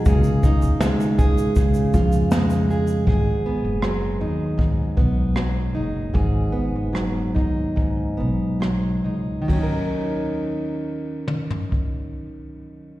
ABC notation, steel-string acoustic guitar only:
X:1
M:4/4
L:1/8
Q:1/4=76
K:Abdor
V:1 name="Steel-string acoustic guitar"
[D,A] E A, A D, F A, A | [A,,A] C G, E A,, C G, E | [A,,A] C G, E A,, C G, E | [E,G,DEB]8 |]